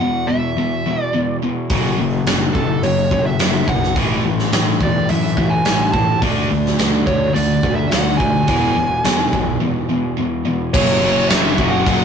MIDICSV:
0, 0, Header, 1, 5, 480
1, 0, Start_track
1, 0, Key_signature, 3, "minor"
1, 0, Tempo, 564440
1, 1447, Time_signature, 4, 2, 24, 8
1, 10243, End_track
2, 0, Start_track
2, 0, Title_t, "Lead electric guitar"
2, 0, Program_c, 0, 29
2, 0, Note_on_c, 0, 78, 104
2, 231, Note_on_c, 0, 76, 89
2, 240, Note_off_c, 0, 78, 0
2, 877, Note_off_c, 0, 76, 0
2, 877, Note_on_c, 0, 74, 89
2, 1165, Note_off_c, 0, 74, 0
2, 2153, Note_on_c, 0, 69, 68
2, 2408, Note_off_c, 0, 69, 0
2, 2408, Note_on_c, 0, 73, 86
2, 2770, Note_off_c, 0, 73, 0
2, 2774, Note_on_c, 0, 76, 89
2, 3136, Note_on_c, 0, 78, 89
2, 3142, Note_off_c, 0, 76, 0
2, 3356, Note_off_c, 0, 78, 0
2, 4107, Note_on_c, 0, 74, 74
2, 4333, Note_off_c, 0, 74, 0
2, 4336, Note_on_c, 0, 76, 88
2, 4677, Note_on_c, 0, 80, 97
2, 4704, Note_off_c, 0, 76, 0
2, 5032, Note_off_c, 0, 80, 0
2, 5036, Note_on_c, 0, 81, 86
2, 5266, Note_off_c, 0, 81, 0
2, 6006, Note_on_c, 0, 73, 75
2, 6240, Note_off_c, 0, 73, 0
2, 6244, Note_on_c, 0, 74, 88
2, 6590, Note_off_c, 0, 74, 0
2, 6593, Note_on_c, 0, 76, 87
2, 6714, Note_off_c, 0, 76, 0
2, 6718, Note_on_c, 0, 78, 87
2, 6949, Note_off_c, 0, 78, 0
2, 6953, Note_on_c, 0, 80, 93
2, 8609, Note_off_c, 0, 80, 0
2, 9131, Note_on_c, 0, 73, 99
2, 9593, Note_off_c, 0, 73, 0
2, 9597, Note_on_c, 0, 76, 104
2, 9952, Note_on_c, 0, 78, 110
2, 9974, Note_off_c, 0, 76, 0
2, 10243, Note_off_c, 0, 78, 0
2, 10243, End_track
3, 0, Start_track
3, 0, Title_t, "Distorted electric guitar"
3, 0, Program_c, 1, 30
3, 0, Note_on_c, 1, 40, 62
3, 1, Note_on_c, 1, 47, 75
3, 218, Note_off_c, 1, 40, 0
3, 219, Note_off_c, 1, 47, 0
3, 236, Note_on_c, 1, 40, 67
3, 236, Note_on_c, 1, 47, 75
3, 457, Note_off_c, 1, 40, 0
3, 457, Note_off_c, 1, 47, 0
3, 482, Note_on_c, 1, 40, 62
3, 484, Note_on_c, 1, 47, 80
3, 700, Note_off_c, 1, 40, 0
3, 701, Note_off_c, 1, 47, 0
3, 730, Note_on_c, 1, 40, 64
3, 733, Note_on_c, 1, 47, 74
3, 944, Note_off_c, 1, 40, 0
3, 945, Note_off_c, 1, 47, 0
3, 973, Note_on_c, 1, 40, 64
3, 977, Note_on_c, 1, 47, 80
3, 1186, Note_off_c, 1, 40, 0
3, 1188, Note_off_c, 1, 47, 0
3, 1219, Note_on_c, 1, 40, 61
3, 1220, Note_on_c, 1, 47, 77
3, 1429, Note_off_c, 1, 40, 0
3, 1429, Note_off_c, 1, 47, 0
3, 1458, Note_on_c, 1, 42, 74
3, 1466, Note_on_c, 1, 49, 81
3, 1467, Note_on_c, 1, 54, 94
3, 1678, Note_off_c, 1, 42, 0
3, 1682, Note_off_c, 1, 49, 0
3, 1682, Note_off_c, 1, 54, 0
3, 1699, Note_on_c, 1, 42, 69
3, 1700, Note_on_c, 1, 49, 76
3, 1909, Note_off_c, 1, 42, 0
3, 1910, Note_off_c, 1, 49, 0
3, 1931, Note_on_c, 1, 42, 72
3, 1937, Note_on_c, 1, 49, 71
3, 2145, Note_off_c, 1, 42, 0
3, 2148, Note_off_c, 1, 49, 0
3, 2172, Note_on_c, 1, 42, 68
3, 2181, Note_on_c, 1, 49, 73
3, 2386, Note_off_c, 1, 42, 0
3, 2390, Note_off_c, 1, 49, 0
3, 2416, Note_on_c, 1, 42, 74
3, 2421, Note_on_c, 1, 49, 75
3, 2628, Note_off_c, 1, 42, 0
3, 2631, Note_off_c, 1, 49, 0
3, 2652, Note_on_c, 1, 42, 66
3, 2653, Note_on_c, 1, 49, 68
3, 2866, Note_off_c, 1, 42, 0
3, 2866, Note_off_c, 1, 49, 0
3, 2889, Note_on_c, 1, 42, 71
3, 2891, Note_on_c, 1, 49, 75
3, 3105, Note_off_c, 1, 42, 0
3, 3106, Note_off_c, 1, 49, 0
3, 3126, Note_on_c, 1, 42, 69
3, 3132, Note_on_c, 1, 49, 73
3, 3343, Note_off_c, 1, 42, 0
3, 3346, Note_off_c, 1, 49, 0
3, 3370, Note_on_c, 1, 45, 87
3, 3371, Note_on_c, 1, 52, 97
3, 3374, Note_on_c, 1, 57, 97
3, 3595, Note_off_c, 1, 45, 0
3, 3596, Note_off_c, 1, 52, 0
3, 3597, Note_off_c, 1, 57, 0
3, 3611, Note_on_c, 1, 45, 71
3, 3614, Note_on_c, 1, 52, 78
3, 3826, Note_off_c, 1, 45, 0
3, 3827, Note_off_c, 1, 52, 0
3, 3851, Note_on_c, 1, 45, 73
3, 3859, Note_on_c, 1, 52, 76
3, 4066, Note_off_c, 1, 45, 0
3, 4070, Note_off_c, 1, 52, 0
3, 4093, Note_on_c, 1, 52, 74
3, 4094, Note_on_c, 1, 45, 62
3, 4308, Note_off_c, 1, 45, 0
3, 4308, Note_off_c, 1, 52, 0
3, 4337, Note_on_c, 1, 45, 72
3, 4343, Note_on_c, 1, 52, 80
3, 4550, Note_off_c, 1, 45, 0
3, 4553, Note_off_c, 1, 52, 0
3, 4571, Note_on_c, 1, 45, 75
3, 4573, Note_on_c, 1, 52, 78
3, 4787, Note_off_c, 1, 45, 0
3, 4788, Note_off_c, 1, 52, 0
3, 4819, Note_on_c, 1, 45, 74
3, 4822, Note_on_c, 1, 52, 82
3, 5031, Note_off_c, 1, 45, 0
3, 5033, Note_off_c, 1, 52, 0
3, 5056, Note_on_c, 1, 45, 68
3, 5057, Note_on_c, 1, 52, 68
3, 5270, Note_off_c, 1, 45, 0
3, 5271, Note_off_c, 1, 52, 0
3, 5285, Note_on_c, 1, 50, 82
3, 5293, Note_on_c, 1, 57, 97
3, 5294, Note_on_c, 1, 62, 99
3, 5514, Note_off_c, 1, 50, 0
3, 5518, Note_off_c, 1, 57, 0
3, 5519, Note_off_c, 1, 62, 0
3, 5539, Note_on_c, 1, 50, 71
3, 5542, Note_on_c, 1, 57, 73
3, 5752, Note_off_c, 1, 50, 0
3, 5753, Note_off_c, 1, 57, 0
3, 5777, Note_on_c, 1, 50, 69
3, 5782, Note_on_c, 1, 57, 82
3, 5991, Note_off_c, 1, 50, 0
3, 5993, Note_off_c, 1, 57, 0
3, 6020, Note_on_c, 1, 50, 71
3, 6022, Note_on_c, 1, 57, 74
3, 6232, Note_off_c, 1, 50, 0
3, 6234, Note_off_c, 1, 57, 0
3, 6250, Note_on_c, 1, 50, 68
3, 6256, Note_on_c, 1, 57, 76
3, 6468, Note_off_c, 1, 50, 0
3, 6471, Note_off_c, 1, 57, 0
3, 6496, Note_on_c, 1, 50, 67
3, 6500, Note_on_c, 1, 57, 67
3, 6711, Note_off_c, 1, 50, 0
3, 6713, Note_off_c, 1, 57, 0
3, 6729, Note_on_c, 1, 50, 66
3, 6733, Note_on_c, 1, 57, 73
3, 6948, Note_off_c, 1, 50, 0
3, 6949, Note_off_c, 1, 57, 0
3, 6970, Note_on_c, 1, 50, 64
3, 6974, Note_on_c, 1, 57, 73
3, 7188, Note_off_c, 1, 50, 0
3, 7190, Note_off_c, 1, 57, 0
3, 7209, Note_on_c, 1, 40, 80
3, 7215, Note_on_c, 1, 47, 91
3, 7217, Note_on_c, 1, 52, 100
3, 7437, Note_off_c, 1, 40, 0
3, 7440, Note_off_c, 1, 47, 0
3, 7441, Note_off_c, 1, 52, 0
3, 7453, Note_on_c, 1, 40, 62
3, 7458, Note_on_c, 1, 47, 75
3, 7670, Note_off_c, 1, 40, 0
3, 7672, Note_off_c, 1, 47, 0
3, 7689, Note_on_c, 1, 40, 64
3, 7693, Note_on_c, 1, 47, 73
3, 7908, Note_off_c, 1, 40, 0
3, 7910, Note_off_c, 1, 47, 0
3, 7929, Note_on_c, 1, 40, 70
3, 7938, Note_on_c, 1, 47, 81
3, 8147, Note_off_c, 1, 40, 0
3, 8152, Note_off_c, 1, 47, 0
3, 8176, Note_on_c, 1, 40, 72
3, 8180, Note_on_c, 1, 47, 84
3, 8391, Note_off_c, 1, 40, 0
3, 8393, Note_off_c, 1, 47, 0
3, 8415, Note_on_c, 1, 40, 68
3, 8418, Note_on_c, 1, 47, 75
3, 8630, Note_off_c, 1, 40, 0
3, 8632, Note_off_c, 1, 47, 0
3, 8660, Note_on_c, 1, 40, 69
3, 8662, Note_on_c, 1, 47, 76
3, 8872, Note_off_c, 1, 40, 0
3, 8874, Note_off_c, 1, 47, 0
3, 8888, Note_on_c, 1, 47, 69
3, 8891, Note_on_c, 1, 40, 64
3, 9106, Note_off_c, 1, 47, 0
3, 9108, Note_off_c, 1, 40, 0
3, 9127, Note_on_c, 1, 42, 101
3, 9127, Note_on_c, 1, 49, 102
3, 9134, Note_on_c, 1, 54, 107
3, 9350, Note_off_c, 1, 42, 0
3, 9358, Note_off_c, 1, 49, 0
3, 9361, Note_on_c, 1, 42, 89
3, 9368, Note_on_c, 1, 49, 88
3, 9371, Note_off_c, 1, 54, 0
3, 9374, Note_on_c, 1, 54, 92
3, 9603, Note_off_c, 1, 42, 0
3, 9607, Note_off_c, 1, 49, 0
3, 9613, Note_on_c, 1, 42, 86
3, 9617, Note_on_c, 1, 49, 87
3, 9618, Note_off_c, 1, 54, 0
3, 9621, Note_on_c, 1, 54, 89
3, 9848, Note_off_c, 1, 42, 0
3, 9855, Note_off_c, 1, 49, 0
3, 9858, Note_off_c, 1, 54, 0
3, 9859, Note_on_c, 1, 42, 89
3, 9865, Note_on_c, 1, 49, 108
3, 9868, Note_on_c, 1, 54, 103
3, 10081, Note_off_c, 1, 42, 0
3, 10086, Note_off_c, 1, 49, 0
3, 10091, Note_off_c, 1, 54, 0
3, 10092, Note_on_c, 1, 42, 84
3, 10096, Note_on_c, 1, 49, 84
3, 10102, Note_on_c, 1, 54, 88
3, 10243, Note_off_c, 1, 42, 0
3, 10243, Note_off_c, 1, 49, 0
3, 10243, Note_off_c, 1, 54, 0
3, 10243, End_track
4, 0, Start_track
4, 0, Title_t, "Picked electric bass"
4, 0, Program_c, 2, 34
4, 1446, Note_on_c, 2, 30, 88
4, 1629, Note_off_c, 2, 30, 0
4, 1681, Note_on_c, 2, 30, 85
4, 1866, Note_off_c, 2, 30, 0
4, 1919, Note_on_c, 2, 30, 85
4, 2105, Note_off_c, 2, 30, 0
4, 2167, Note_on_c, 2, 30, 79
4, 2350, Note_off_c, 2, 30, 0
4, 2398, Note_on_c, 2, 30, 91
4, 2584, Note_off_c, 2, 30, 0
4, 2646, Note_on_c, 2, 30, 78
4, 2829, Note_off_c, 2, 30, 0
4, 2885, Note_on_c, 2, 30, 84
4, 3069, Note_off_c, 2, 30, 0
4, 3128, Note_on_c, 2, 35, 81
4, 3370, Note_off_c, 2, 35, 0
4, 3370, Note_on_c, 2, 33, 91
4, 3552, Note_off_c, 2, 33, 0
4, 3608, Note_on_c, 2, 33, 82
4, 3791, Note_off_c, 2, 33, 0
4, 3849, Note_on_c, 2, 45, 88
4, 4032, Note_off_c, 2, 45, 0
4, 4088, Note_on_c, 2, 28, 80
4, 4271, Note_off_c, 2, 28, 0
4, 4336, Note_on_c, 2, 42, 92
4, 4517, Note_off_c, 2, 42, 0
4, 4568, Note_on_c, 2, 33, 86
4, 4752, Note_off_c, 2, 33, 0
4, 4815, Note_on_c, 2, 33, 82
4, 4996, Note_off_c, 2, 33, 0
4, 5047, Note_on_c, 2, 45, 82
4, 5232, Note_off_c, 2, 45, 0
4, 5289, Note_on_c, 2, 38, 92
4, 5473, Note_off_c, 2, 38, 0
4, 5533, Note_on_c, 2, 38, 77
4, 5715, Note_off_c, 2, 38, 0
4, 5774, Note_on_c, 2, 38, 90
4, 5956, Note_off_c, 2, 38, 0
4, 6010, Note_on_c, 2, 38, 82
4, 6194, Note_off_c, 2, 38, 0
4, 6255, Note_on_c, 2, 38, 88
4, 6437, Note_off_c, 2, 38, 0
4, 6492, Note_on_c, 2, 38, 77
4, 6675, Note_off_c, 2, 38, 0
4, 6737, Note_on_c, 2, 38, 82
4, 6918, Note_off_c, 2, 38, 0
4, 6972, Note_on_c, 2, 38, 81
4, 7155, Note_off_c, 2, 38, 0
4, 7214, Note_on_c, 2, 28, 94
4, 7397, Note_off_c, 2, 28, 0
4, 7462, Note_on_c, 2, 28, 75
4, 7642, Note_off_c, 2, 28, 0
4, 7697, Note_on_c, 2, 40, 83
4, 7878, Note_off_c, 2, 40, 0
4, 7933, Note_on_c, 2, 35, 77
4, 8116, Note_off_c, 2, 35, 0
4, 9131, Note_on_c, 2, 30, 95
4, 9314, Note_off_c, 2, 30, 0
4, 9373, Note_on_c, 2, 30, 82
4, 9555, Note_off_c, 2, 30, 0
4, 9615, Note_on_c, 2, 30, 97
4, 9796, Note_off_c, 2, 30, 0
4, 9852, Note_on_c, 2, 30, 87
4, 10034, Note_off_c, 2, 30, 0
4, 10088, Note_on_c, 2, 30, 94
4, 10243, Note_off_c, 2, 30, 0
4, 10243, End_track
5, 0, Start_track
5, 0, Title_t, "Drums"
5, 1444, Note_on_c, 9, 46, 49
5, 1447, Note_on_c, 9, 36, 100
5, 1529, Note_off_c, 9, 46, 0
5, 1532, Note_off_c, 9, 36, 0
5, 1927, Note_on_c, 9, 46, 50
5, 1933, Note_on_c, 9, 38, 109
5, 2012, Note_off_c, 9, 46, 0
5, 2018, Note_off_c, 9, 38, 0
5, 2168, Note_on_c, 9, 36, 81
5, 2253, Note_off_c, 9, 36, 0
5, 2410, Note_on_c, 9, 46, 53
5, 2495, Note_off_c, 9, 46, 0
5, 2647, Note_on_c, 9, 36, 85
5, 2732, Note_off_c, 9, 36, 0
5, 2886, Note_on_c, 9, 46, 57
5, 2892, Note_on_c, 9, 38, 102
5, 2971, Note_off_c, 9, 46, 0
5, 2977, Note_off_c, 9, 38, 0
5, 3127, Note_on_c, 9, 36, 88
5, 3212, Note_off_c, 9, 36, 0
5, 3260, Note_on_c, 9, 38, 32
5, 3345, Note_off_c, 9, 38, 0
5, 3368, Note_on_c, 9, 36, 99
5, 3371, Note_on_c, 9, 46, 52
5, 3453, Note_off_c, 9, 36, 0
5, 3456, Note_off_c, 9, 46, 0
5, 3732, Note_on_c, 9, 38, 31
5, 3818, Note_off_c, 9, 38, 0
5, 3848, Note_on_c, 9, 46, 53
5, 3854, Note_on_c, 9, 38, 110
5, 3933, Note_off_c, 9, 46, 0
5, 3939, Note_off_c, 9, 38, 0
5, 4086, Note_on_c, 9, 36, 86
5, 4171, Note_off_c, 9, 36, 0
5, 4328, Note_on_c, 9, 46, 52
5, 4413, Note_off_c, 9, 46, 0
5, 4567, Note_on_c, 9, 36, 83
5, 4652, Note_off_c, 9, 36, 0
5, 4806, Note_on_c, 9, 46, 52
5, 4812, Note_on_c, 9, 38, 106
5, 4891, Note_off_c, 9, 46, 0
5, 4897, Note_off_c, 9, 38, 0
5, 5047, Note_on_c, 9, 36, 87
5, 5132, Note_off_c, 9, 36, 0
5, 5289, Note_on_c, 9, 36, 100
5, 5291, Note_on_c, 9, 46, 51
5, 5374, Note_off_c, 9, 36, 0
5, 5376, Note_off_c, 9, 46, 0
5, 5664, Note_on_c, 9, 38, 32
5, 5749, Note_off_c, 9, 38, 0
5, 5773, Note_on_c, 9, 46, 51
5, 5779, Note_on_c, 9, 38, 100
5, 5858, Note_off_c, 9, 46, 0
5, 5864, Note_off_c, 9, 38, 0
5, 6012, Note_on_c, 9, 36, 84
5, 6097, Note_off_c, 9, 36, 0
5, 6259, Note_on_c, 9, 46, 49
5, 6344, Note_off_c, 9, 46, 0
5, 6491, Note_on_c, 9, 36, 87
5, 6576, Note_off_c, 9, 36, 0
5, 6730, Note_on_c, 9, 46, 52
5, 6736, Note_on_c, 9, 38, 100
5, 6815, Note_off_c, 9, 46, 0
5, 6821, Note_off_c, 9, 38, 0
5, 6973, Note_on_c, 9, 36, 88
5, 7058, Note_off_c, 9, 36, 0
5, 7209, Note_on_c, 9, 46, 54
5, 7213, Note_on_c, 9, 36, 101
5, 7294, Note_off_c, 9, 46, 0
5, 7298, Note_off_c, 9, 36, 0
5, 7693, Note_on_c, 9, 46, 55
5, 7699, Note_on_c, 9, 38, 103
5, 7778, Note_off_c, 9, 46, 0
5, 7784, Note_off_c, 9, 38, 0
5, 7935, Note_on_c, 9, 36, 85
5, 8020, Note_off_c, 9, 36, 0
5, 9132, Note_on_c, 9, 36, 117
5, 9134, Note_on_c, 9, 49, 111
5, 9134, Note_on_c, 9, 57, 61
5, 9217, Note_off_c, 9, 36, 0
5, 9219, Note_off_c, 9, 49, 0
5, 9219, Note_off_c, 9, 57, 0
5, 9609, Note_on_c, 9, 57, 61
5, 9614, Note_on_c, 9, 38, 116
5, 9694, Note_off_c, 9, 57, 0
5, 9699, Note_off_c, 9, 38, 0
5, 9849, Note_on_c, 9, 36, 90
5, 9934, Note_off_c, 9, 36, 0
5, 10090, Note_on_c, 9, 36, 91
5, 10093, Note_on_c, 9, 57, 65
5, 10175, Note_off_c, 9, 36, 0
5, 10178, Note_off_c, 9, 57, 0
5, 10243, End_track
0, 0, End_of_file